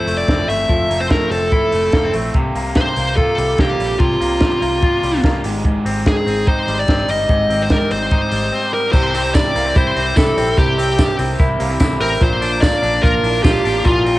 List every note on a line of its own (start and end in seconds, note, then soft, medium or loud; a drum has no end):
0.00 0.69 F3 medium
0.00 0.18 A3 medium
0.00 0.18 C4 medium
0.00 0.27 C4 medium
0.00 0.18 E4 medium
0.00 1.51 E4 medium
0.00 0.17 A4 medium
0.00 0.15 C5 medium
0.07 0.24 F1 medium
0.07 0.47 A3 soft
0.07 open hi-hat medium
0.17 0.39 C4 soft
0.17 0.39 E4 soft
0.17 0.39 A4 soft
0.17 0.46 D5 medium
0.28 0.45 F1 medium
0.28 0.90 C4 medium
0.28 kick loud
0.28 snare loud
0.28 closed hi-hat medium
0.40 0.70 F3 medium
0.40 0.68 A3 medium
0.40 0.70 C4 medium
0.40 0.70 E4 medium
0.40 0.70 A4 medium
0.48 0.65 G1 medium
0.48 1.09 A3 medium
0.48 0.97 E5 medium
0.48 open hi-hat medium
0.69 0.86 F1 medium
0.69 2.35 F3 medium
0.69 0.88 A3 soft
0.69 0.89 C4 medium
0.69 0.90 E4 medium
0.69 0.90 A4 medium
0.69 kick medium
0.69 closed hi-hat medium
0.90 1.16 F1 medium
0.90 1.21 A3 medium
0.90 1.00 A#3 soft
0.90 1.21 C4 medium
0.90 1.20 E4 medium
0.90 1.20 A4 medium
0.90 open hi-hat medium
1.00 1.30 C4 soft
1.00 1.06 C5 medium
1.10 1.72 A3 medium
1.10 1.31 A#4 medium
1.10 kick loud
1.10 snare loud
1.10 closed hi-hat medium
1.21 1.53 F3 medium
1.21 1.50 A3 medium
1.21 1.51 C4 medium
1.21 1.51 E4 medium
1.21 1.52 A4 medium
1.31 1.57 F1 medium
1.31 1.93 C4 soft
1.31 2.10 A4 medium
1.31 open hi-hat medium
1.51 1.83 A3 medium
1.51 1.83 C4 medium
1.51 1.82 E4 medium
1.51 2.39 E4 medium
1.51 1.81 A4 medium
1.51 kick loud
1.51 closed hi-hat medium
1.72 1.90 F1 medium
1.72 2.13 A3 soft
1.72 open hi-hat medium
1.83 2.04 C4 soft
1.83 2.03 E4 soft
1.83 2.03 A4 soft
1.92 2.10 F1 medium
1.92 2.04 A#3 medium
1.92 kick loud
1.92 snare loud
1.92 closed hi-hat medium
2.04 2.33 F3 medium
2.04 2.34 A3 medium
2.04 2.39 C4 soft
2.04 2.35 C4 medium
2.04 2.35 E4 medium
2.04 2.35 A4 medium
2.13 2.31 A#1 medium
2.13 2.39 A3 medium
2.13 open hi-hat medium
2.34 2.52 C2 medium
2.34 3.99 C3 medium
2.34 2.54 F3 medium
2.34 2.55 A#3 medium
2.34 2.55 F4 medium
2.34 2.56 G4 medium
2.34 kick medium
2.34 closed hi-hat medium
2.55 2.81 C2 medium
2.55 2.86 F3 medium
2.55 2.96 A#3 medium
2.55 2.86 A#3 medium
2.55 2.86 F4 medium
2.55 2.85 G4 medium
2.55 open hi-hat medium
2.75 3.38 G3 medium
2.75 3.16 C5 medium
2.75 kick medium
2.75 snare loud
2.75 closed hi-hat medium
2.87 3.18 C3 medium
2.87 3.16 F3 medium
2.87 3.17 A#3 medium
2.87 3.17 F4 medium
2.87 3.17 G4 medium
2.96 3.22 C2 medium
2.96 3.58 A#3 medium
2.96 open hi-hat medium
3.17 3.48 F3 medium
3.17 3.49 A#3 medium
3.17 4.82 F4 medium
3.17 3.48 F4 medium
3.17 3.46 G4 medium
3.17 3.59 A4 medium
3.17 kick loud
3.17 closed hi-hat medium
3.38 3.55 C2 medium
3.38 3.80 G3 soft
3.38 open hi-hat medium
3.48 3.68 A#3 soft
3.48 3.68 F4 soft
3.48 3.67 G4 soft
3.58 3.76 C2 medium
3.58 4.20 A#3 medium
3.58 3.99 G4 medium
3.58 kick loud
3.58 snare loud
3.58 closed hi-hat medium
3.68 4.00 C3 medium
3.68 3.98 F3 medium
3.68 3.99 A#3 medium
3.68 4.00 F4 medium
3.68 4.00 G4 medium
3.79 3.96 A#1 medium
3.79 4.41 G3 medium
3.79 open hi-hat medium
3.99 4.17 C2 loud
3.99 5.48 C3 medium
3.99 4.19 F3 medium
3.99 4.20 A#3 medium
3.99 5.20 F4 medium
3.99 4.21 F4 medium
3.99 4.21 G4 medium
3.99 kick medium
3.99 closed hi-hat medium
4.20 4.46 C2 medium
4.20 4.50 F3 medium
4.20 4.61 A#3 medium
4.20 4.50 A#3 medium
4.20 4.50 F4 medium
4.20 4.49 G4 medium
4.20 open hi-hat medium
4.40 5.03 G3 medium
4.40 kick loud
4.40 snare loud
4.40 closed hi-hat medium
4.50 4.83 C3 medium
4.50 4.81 F3 medium
4.50 4.82 A#3 medium
4.50 4.82 F4 medium
4.50 4.82 G4 medium
4.62 4.87 C2 medium
4.62 5.23 A#3 medium
4.62 open hi-hat medium
4.82 5.13 F3 medium
4.82 5.14 A#3 medium
4.82 5.49 F4 medium
4.82 5.14 F4 medium
4.82 5.12 G4 medium
4.82 kick loud
4.82 closed hi-hat medium
5.02 5.20 C2 medium
5.02 5.68 G3 medium
5.02 open hi-hat medium
5.13 5.34 A#3 soft
5.13 5.33 F4 soft
5.13 5.33 G4 medium
5.24 5.41 C2 medium
5.24 5.49 A#3 medium
5.24 kick loud
5.24 snare loud
5.24 closed hi-hat medium
5.34 5.45 C3 medium
5.34 5.43 F3 medium
5.34 5.43 A#3 medium
5.34 5.44 F4 medium
5.34 5.43 G4 medium
5.43 5.78 G#1 medium
5.43 5.64 G#2 medium
5.43 5.84 G#3 medium
5.43 5.85 C4 medium
5.43 5.85 D#4 medium
5.43 5.86 G4 medium
5.43 open hi-hat medium
5.65 7.28 G#2 medium
5.65 kick medium
5.65 closed hi-hat medium
5.85 6.11 G#1 medium
5.85 6.16 G#3 medium
5.85 6.26 C4 medium
5.85 6.16 C4 medium
5.85 6.15 D#4 medium
5.85 6.17 G4 medium
5.85 open hi-hat medium
6.06 6.45 G#4 medium
6.06 kick loud
6.06 snare loud
6.06 closed hi-hat medium
6.16 6.45 G#3 medium
6.16 6.46 C4 medium
6.16 6.47 D#4 medium
6.26 6.52 G#1 medium
6.26 6.88 C4 medium
6.26 open hi-hat medium
6.47 6.78 G#3 medium
6.47 6.78 C4 medium
6.47 8.10 D#4 medium
6.47 6.78 D#4 medium
6.47 6.76 G4 medium
6.47 6.79 C5 medium
6.47 kick loud
6.47 closed hi-hat medium
6.67 6.84 G#1 medium
6.67 7.08 G3 medium
6.67 open hi-hat medium
6.77 6.98 C4 soft
6.77 6.98 D#4 soft
6.77 6.97 G4 soft
6.77 7.07 D5 medium
6.88 7.05 G#1 medium
6.88 7.50 C4 medium
6.88 kick loud
6.88 snare loud
6.88 closed hi-hat medium
6.98 7.28 G#3 medium
6.98 7.29 C4 medium
6.98 7.30 D#4 medium
6.98 7.29 G4 medium
7.08 7.26 G1 medium
7.08 7.70 G3 medium
7.08 7.63 D#5 loud
7.08 open hi-hat medium
7.29 7.46 G#1 medium
7.29 8.94 G#2 medium
7.29 7.49 G#3 soft
7.29 7.50 C4 medium
7.29 7.50 D#4 medium
7.29 7.51 G4 medium
7.29 kick medium
7.29 closed hi-hat medium
7.50 7.75 G#1 medium
7.50 7.81 G#3 medium
7.50 7.90 C4 medium
7.50 7.81 C4 medium
7.50 7.81 D#4 medium
7.50 7.80 G4 medium
7.50 open hi-hat medium
7.63 7.72 C5 medium
7.70 8.32 G3 medium
7.70 7.92 A#4 medium
7.70 kick loud
7.70 snare loud
7.70 closed hi-hat medium
7.81 8.11 G#3 soft
7.81 8.11 C4 medium
7.81 8.12 D#4 medium
7.81 8.12 G4 medium
7.91 8.16 G#1 medium
7.91 8.52 C4 medium
7.91 8.70 C5 medium
7.91 open hi-hat medium
8.11 8.43 G#3 medium
8.11 8.43 C4 medium
8.11 8.98 D#4 medium
8.11 8.41 D#4 medium
8.11 8.41 G4 medium
8.11 kick medium
8.11 closed hi-hat medium
8.32 8.49 G#1 medium
8.32 8.73 G3 soft
8.32 open hi-hat medium
8.42 8.63 C4 soft
8.42 8.62 D#4 soft
8.42 8.62 G4 soft
8.53 9.14 C4 medium
8.63 8.93 G#3 medium
8.63 8.93 C4 medium
8.63 8.94 D#4 medium
8.63 8.93 G4 medium
8.73 9.35 G3 medium
8.73 8.92 A#4 medium
8.92 9.42 C2 loud
8.92 10.56 C3 medium
8.92 9.14 C3 medium
8.92 9.13 G3 medium
8.92 9.06 C4 medium
8.92 9.13 C4 medium
8.92 9.06 E4 medium
8.92 9.14 E4 medium
8.92 9.06 G4 loud
8.92 9.15 G4 medium
8.92 9.35 C5 loud
8.92 kick loud
8.92 crash loud
8.92 tambourine soft
9.14 9.24 G3 medium
9.14 9.26 C4 medium
9.14 9.25 C4 medium
9.14 9.55 C4 medium
9.14 9.26 E4 medium
9.14 9.25 E4 medium
9.14 9.27 G4 medium
9.14 9.24 G4 medium
9.14 open hi-hat medium
9.14 tambourine medium
9.25 9.96 C4 soft
9.25 9.96 E4 medium
9.25 9.97 G4 medium
9.34 10.97 G3 medium
9.34 9.47 C4 medium
9.34 9.47 E4 medium
9.34 9.47 G4 medium
9.34 9.77 D5 loud
9.34 kick loud
9.34 snare loud
9.34 closed hi-hat medium
9.34 tambourine medium
9.54 9.72 C2 medium
9.54 9.65 A#3 medium
9.54 9.67 C4 medium
9.54 9.68 E4 medium
9.54 9.67 A#4 medium
9.54 open hi-hat medium
9.54 tambourine medium
9.65 9.95 C4 medium
9.74 9.93 C2 loud
9.74 9.87 C4 loud
9.74 9.88 E4 medium
9.74 10.16 E4 medium
9.74 9.88 G4 loud
9.74 10.15 C5 medium
9.74 kick loud
9.74 closed hi-hat medium
9.74 tambourine soft
9.95 10.13 C2 loud
9.95 10.15 G3 medium
9.95 10.08 C4 medium
9.95 10.36 C4 medium
9.95 10.16 C4 medium
9.95 10.08 E4 medium
9.95 10.17 E4 medium
9.95 10.08 G4 medium
9.95 10.17 G4 medium
9.95 open hi-hat medium
10.16 10.34 C2 loud
10.16 10.36 G3 medium
10.16 10.29 C4 medium
10.16 10.36 C4 medium
10.16 10.29 E4 medium
10.16 11.38 E4 medium
10.16 10.37 E4 medium
10.16 10.29 G4 medium
10.16 10.38 G4 medium
10.16 10.58 A4 medium
10.16 kick loud
10.16 snare loud
10.16 tambourine medium
10.36 10.54 A#1 medium
10.36 10.57 G3 medium
10.36 10.49 C4 medium
10.36 10.77 C4 medium
10.36 10.58 C4 medium
10.36 10.49 E4 medium
10.36 10.58 E4 medium
10.36 10.49 G4 medium
10.36 10.58 G4 medium
10.36 open hi-hat medium
10.36 tambourine soft
10.56 11.06 C2 loud
10.56 12.20 C3 medium
10.56 10.78 C3 medium
10.56 10.76 G3 medium
10.56 10.69 C4 loud
10.56 10.77 C4 medium
10.56 10.69 E4 medium
10.56 10.77 E4 medium
10.56 11.15 G4 medium
10.56 10.78 G4 medium
10.56 10.70 A#4 loud
10.56 kick medium
10.56 closed hi-hat medium
10.56 tambourine soft
10.77 10.88 G3 medium
10.77 10.90 C4 medium
10.77 10.88 C4 medium
10.77 11.18 C4 medium
10.77 10.90 E4 medium
10.77 10.88 E4 medium
10.77 10.90 G4 medium
10.77 10.87 G4 medium
10.77 open hi-hat medium
10.77 tambourine medium
10.88 11.59 C4 soft
10.88 11.60 E4 medium
10.88 11.60 G4 medium
10.98 12.26 G3 medium
10.98 11.10 C4 medium
10.98 11.10 E4 medium
10.98 11.11 G4 medium
10.98 kick loud
10.98 snare loud
10.98 closed hi-hat medium
10.98 tambourine medium
11.19 11.36 C2 medium
11.19 11.31 C4 medium
11.19 11.59 C4 medium
11.19 11.31 E4 medium
11.19 11.31 G4 loud
11.19 open hi-hat medium
11.19 tambourine medium
11.38 11.56 C2 loud
11.38 11.52 C4 loud
11.38 11.79 E4 medium
11.38 11.52 E4 loud
11.38 11.52 A#4 loud
11.38 kick loud
11.38 closed hi-hat medium
11.38 tambourine soft
11.59 11.77 C2 loud
11.59 11.79 G3 medium
11.59 11.70 A#3 medium
11.59 11.72 C4 medium
11.59 11.80 C4 medium
11.59 11.72 E4 medium
11.59 11.80 E4 medium
11.59 11.72 G4 medium
11.59 11.81 G4 medium
11.59 open hi-hat medium
11.59 tambourine soft
11.70 11.99 C4 medium
11.80 11.97 C2 loud
11.80 12.00 G3 medium
11.80 11.92 C4 medium
11.80 12.01 C4 medium
11.80 11.92 E4 medium
11.80 12.25 E4 medium
11.80 12.01 E4 medium
11.80 12.02 G4 medium
11.80 11.93 A4 loud
11.80 kick loud
11.80 snare loud
11.80 closed hi-hat medium
11.80 tambourine medium
11.99 12.17 A1 loud
11.99 12.21 G3 medium
11.99 12.12 C4 medium
11.99 12.25 C4 medium
11.99 12.22 C4 medium
11.99 12.13 E4 medium
11.99 12.22 E4 medium
11.99 12.13 G4 medium
11.99 12.22 G4 medium
11.99 12.22 A#4 medium
11.99 open hi-hat medium
11.99 tambourine soft
12.20 12.70 A#1 loud
12.20 13.84 A#2 medium
12.20 12.42 A#2 medium
12.20 12.42 D3 medium
12.20 12.42 F3 medium
12.20 12.33 A#3 medium
12.20 12.43 A#3 medium
12.20 12.33 D4 medium
12.20 12.43 D4 medium
12.20 12.33 F4 loud
12.20 12.43 A#4 medium
12.20 12.60 C5 loud
12.20 kick loud
12.20 closed hi-hat medium
12.20 tambourine soft
12.40 12.53 F3 medium
12.40 12.53 A#3 medium
12.40 12.54 D4 medium
12.40 12.81 D4 medium
12.40 12.54 F4 medium
12.40 open hi-hat medium
12.40 tambourine medium
12.45 12.52 D4 medium
12.45 12.51 A#4 medium
12.52 13.24 F3 soft
12.52 13.24 A#3 medium
12.52 13.24 D4 medium
12.52 13.24 A#4 medium
12.61 12.74 A#3 medium
12.61 14.19 A#3 medium
12.61 12.74 D4 medium
12.61 12.75 F4 medium
12.61 13.04 D5 loud
12.61 kick loud
12.61 snare loud
12.61 closed hi-hat medium
12.61 tambourine loud
12.82 12.99 A#1 loud
12.82 12.95 A#3 medium
12.82 12.95 D4 medium
12.82 13.22 D4 medium
12.82 12.95 F4 medium
12.82 open hi-hat medium
12.82 tambourine medium
13.02 13.20 A#1 loud
13.02 13.15 A#3 loud
13.02 13.15 D4 medium
13.02 13.44 F4 medium
13.02 13.15 F4 loud
13.02 13.41 A#4 medium
13.02 kick loud
13.02 closed hi-hat medium
13.02 tambourine soft
13.22 13.40 A#1 medium
13.22 13.44 F3 medium
13.22 13.35 A#3 medium
13.22 13.45 A#3 medium
13.22 13.35 D4 medium
13.22 13.63 D4 medium
13.22 13.45 D4 medium
13.22 13.36 E4 medium
13.22 13.45 A#4 medium
13.22 open hi-hat medium
13.43 13.61 A#1 loud
13.43 13.64 F3 medium
13.43 13.56 A#3 medium
13.43 13.65 A#3 medium
13.43 13.56 D4 medium
13.43 13.66 D4 medium
13.43 13.56 F4 medium
13.43 14.19 F4 medium
13.43 13.86 G4 medium
13.43 kick loud
13.43 snare loud
13.43 closed hi-hat medium
13.43 tambourine medium
13.47 13.66 A#4 medium
13.64 13.82 A1 medium
13.64 13.86 F3 medium
13.64 13.77 A#3 medium
13.64 13.86 A#3 medium
13.64 13.77 D4 medium
13.64 14.05 D4 medium
13.64 13.86 D4 medium
13.64 13.77 F4 medium
13.64 13.86 A#4 medium
13.64 open hi-hat medium
13.64 tambourine soft
13.84 14.19 A#1 medium
13.84 14.19 A#2 medium
13.84 14.06 A#2 medium
13.84 14.07 D3 medium
13.84 14.05 F3 medium
13.84 13.97 A#3 medium
13.84 14.06 A#3 medium
13.84 13.97 D4 medium
13.84 14.06 D4 medium
13.84 13.97 E4 loud
13.84 14.19 F4 medium
13.84 14.07 A#4 medium
13.84 kick medium
13.84 closed hi-hat medium
13.84 tambourine soft
14.05 14.16 F3 medium
14.05 14.18 A#3 medium
14.05 14.17 A#3 medium
14.05 14.16 C4 medium
14.05 14.18 D4 medium
14.05 14.17 D4 medium
14.05 14.18 F4 medium
14.05 14.16 A#4 medium
14.05 open hi-hat medium
14.05 tambourine medium